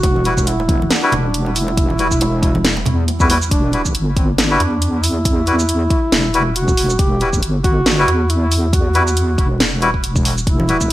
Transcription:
Already playing: G3 E4 F#4 F#5
0.03 E1, kick, closed hi-hat, high bongo
0.16 high conga
0.25 G3 E4 F#4 B4, closed hi-hat
0.37 kick, high bongo, shaker
0.47 E4, closed hi-hat
0.60 high bongo
0.69 kick, closed hi-hat
0.82 E4, high conga
0.91 D4, snare, closed hi-hat, high bongo
1.03 G3 E4 F#4 B4
1.12 E1, closed hi-hat, high bongo, low conga
1.34 closed hi-hat
1.46 high bongo
1.56 E4, open hi-hat, shaker
1.68 high bongo
1.77 kick, closed hi-hat
1.90 high conga
1.99 E1 G3 E4 F#4 B4, closed hi-hat, high bongo
2.11 kick, shaker
2.21 closed hi-hat, high bongo
2.43 kick, closed hi-hat
2.55 high bongo, high conga
2.65 snare, closed hi-hat
2.77 high bongo
2.86 E2, closed hi-hat, low conga
3.08 closed hi-hat, high bongo
3.20 G3 E4 F#4 B4, kick, shaker
3.30 G3 E4 F#4 B4, open hi-hat, high bongo
3.42 shaker
3.51 E1 D4, kick, closed hi-hat
3.73 G3 E4 F#4 B4, closed hi-hat
3.85 kick, shaker
3.95 G1, closed hi-hat
4.17 C4, kick, closed hi-hat
4.38 D4, snare, closed hi-hat
4.51 G3 E4 F#4 B4
4.60 E2, closed hi-hat
4.82 closed hi-hat
5.04 E4, open hi-hat, shaker
5.25 kick, closed hi-hat
5.47 G3 E4 F#4 B4, closed hi-hat
5.59 shaker
5.69 closed hi-hat
5.90 kick, closed hi-hat
6.12 E1, snare, closed hi-hat
6.34 G3 E4 F#4 B4, closed hi-hat
6.56 F#4, closed hi-hat
6.68 kick, shaker
6.77 open hi-hat
6.90 shaker
6.99 E1 G4, kick, closed hi-hat
7.21 G3 E4 F#4 B4, closed hi-hat
7.33 kick, shaker
7.43 G1, closed hi-hat
7.64 F#4, kick, closed hi-hat
7.86 snare, closed hi-hat
7.98 G3 E4 F#4 B4
8.08 E2, closed hi-hat
8.30 E4, closed hi-hat
8.52 open hi-hat, shaker
8.73 F#4, kick, closed hi-hat
8.95 G3 E4 F#4 B4, closed hi-hat
9.07 shaker
9.17 closed hi-hat
9.38 E1, kick, closed hi-hat
9.60 snare, closed hi-hat
9.82 G3 E4 F#4 B4, closed hi-hat
9.94 kick
10.03 E1, closed hi-hat
10.16 kick, shaker
10.25 open hi-hat
10.38 shaker
10.47 E1 E4, kick, closed hi-hat
10.60 high conga
10.69 G3 E4 F#4 B4, closed hi-hat
10.81 kick, high bongo, shaker

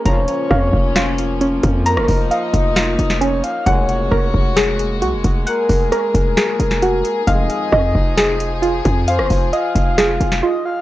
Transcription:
Already playing: A#3
0.05 F1 C#2 A#2 F3 C#4 C#5 A#5, kick, closed hi-hat
0.28 closed hi-hat
0.51 F2 F5, kick, cross-stick
0.73 F1, kick
0.96 F4, snare, closed hi-hat
1.18 closed hi-hat
1.41 C#4, closed hi-hat
1.63 F2, kick, closed hi-hat
1.86 D#4 A#4 A#5, closed hi-hat
1.97 F#1, cross-stick
2.08 F1, kick, open hi-hat
2.30 D#5 F5, closed hi-hat
2.54 F1, kick, closed hi-hat
2.76 F4, snare, closed hi-hat
2.99 F1, closed hi-hat
3.10 snare
3.21 C#4 C#5, closed hi-hat
3.44 F5, closed hi-hat
3.66 F1 C#2 A#2 G#3 F#4 C#5 F#5, kick, closed hi-hat
3.89 closed hi-hat
4.11 F1 A#4, kick, cross-stick
4.34 F1, kick
4.56 G#4, snare, closed hi-hat
4.79 closed hi-hat
5.02 C2 F#4, closed hi-hat
5.13 F1
5.24 F1, kick, closed hi-hat
5.47 G#4 A#4 F#5, closed hi-hat
5.69 F1, kick, open hi-hat
5.92 A#4, cross-stick, closed hi-hat
6.14 F1, kick, closed hi-hat
6.37 G#4, snare, closed hi-hat
6.60 F1, closed hi-hat
6.71 snare
6.82 F#4, closed hi-hat
7.05 closed hi-hat
7.27 F1 F2 D#3 F3 G#3 D#4 D#5 F5, kick, closed hi-hat
7.50 closed hi-hat
7.72 F2 D#5, kick, cross-stick
7.95 F1, kick
8.17 G#4, snare, closed hi-hat
8.40 closed hi-hat
8.62 F4, closed hi-hat
8.85 F2, kick, closed hi-hat
9.08 F4 C5 F5, closed hi-hat
9.19 F#1, cross-stick
9.30 F1, kick, open hi-hat
9.53 D#5 F5, closed hi-hat
9.75 F1, kick, closed hi-hat
9.98 G#4, snare, closed hi-hat
10.20 F1, closed hi-hat
10.32 snare
10.43 F4 D#5
10.65 F5

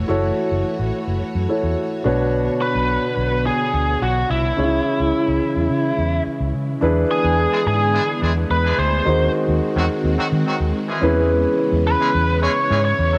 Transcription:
Already playing: E3 A3 F#4 C#5
0.08 F#1 E4 F#4 A4 C#5
0.51 F#1
0.79 A1
1.07 F#1
1.22 muted fingered electric bass stroke
1.35 F#2
1.49 E4 F#4 A4 C#5
1.63 E2
2.04 B1 B2 D3 B3 D4 F#4 B4 C#5
2.62 B4
2.75 B1
3.17 B1
3.47 G#4
3.74 D2
4.02 B1 F#4
4.30 C2 E4
4.57 C#2 C#3 E3 G#3 C#4 D#4 E4 G#4 C#5
4.64 E4
5.00 C#2
5.28 C#2
5.56 E2
5.70 C#3
5.98 E2
6.26 muted fingered electric bass stroke
6.40 C#2
6.54 C#3
6.81 E2 D3 E3 G#3 B3 D4 E4 G#4 B4
7.11 G#4
7.24 E2
7.52 E3 G#3 D4 G#4
7.66 G#2 G#4
7.94 E3 G#3 D4 G#4
8.22 E2 E3 G#3 D4 G#4
8.50 E2 B4
8.64 E3 G#3 D4 G#4
8.78 D2 C5
9.05 D#2 D#3 C4 D#4 F#4 G#4 C5
9.48 D#2
9.76 E2 D#3 F#3 C4 F#4
10.04 D#2
10.18 D#3 F#3 C4 F#4
10.32 D#3
10.46 D#3 F#3 C4 F#4
10.60 D#2
10.89 E3 G#3 C#4 G#4
11.02 E2 C#3 E3 B3 C#4 E4 G#4 B4
11.72 E2
11.87 B4
12.01 E3 G#3 C#4 G#4
12.15 E2
12.43 E3 G#3 C#4 G#4 C#5
12.71 G#2 E3 G#3 C#4 G#4
12.85 C#5
12.99 E2
13.13 F#3 A3 E4 A4

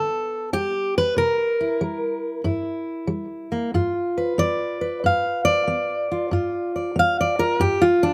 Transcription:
Already playing: D3 B3 A4
0.53 G3 G4
0.98 B4
1.16 C3 A#4
1.61 E4
1.81 G3
2.44 G2 E4
3.07 G3
3.52 A#3
3.74 G2 F4
4.18 B4
4.38 B3 D5
4.81 B4
5.04 G2 F5
5.45 D5
5.67 B3
6.12 F4
6.31 G2 F4
6.76 D5
6.96 B3 F5
7.21 D5
7.39 F4 A#4
7.60 G2 G4
7.82 F4
8.03 D4

